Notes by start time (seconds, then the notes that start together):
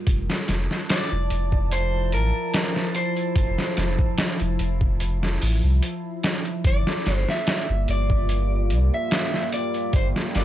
0.07 F1 F3 E4 A5, kick, closed hi-hat
0.30 snare
0.48 F1, snare, closed hi-hat
0.71 snare
0.89 D5, snare, closed hi-hat
1.12 F1
1.30 F1, closed hi-hat
1.52 kick
1.71 C5, closed hi-hat
2.12 A1 A#4, closed hi-hat
2.54 snare, closed hi-hat
2.76 snare
2.95 C5, closed hi-hat
3.16 closed hi-hat
3.36 F1, kick, closed hi-hat
3.58 snare
3.77 F1, snare, closed hi-hat
3.99 kick
4.18 snare, closed hi-hat
4.39 F1, closed hi-hat
4.59 F1, closed hi-hat
4.81 kick
5.00 closed hi-hat
5.23 snare
5.42 A1, open hi-hat
5.64 C2
5.83 closed hi-hat
6.23 snare, closed hi-hat
6.45 closed hi-hat
6.64 G1 G3 A#3 F4 D5, kick, closed hi-hat
6.87 snare
7.06 G1, snare, closed hi-hat
7.16 C5
7.29 E5, snare
7.47 snare, closed hi-hat
7.69 G1
7.88 G1 D5, closed hi-hat
8.10 kick
8.29 closed hi-hat
8.70 C2, closed hi-hat
8.94 E5
9.11 snare, closed hi-hat
9.34 snare
9.52 D5, closed hi-hat
9.74 closed hi-hat
9.93 G1 C5, kick, closed hi-hat
10.16 snare
10.35 G1 D5, snare, closed hi-hat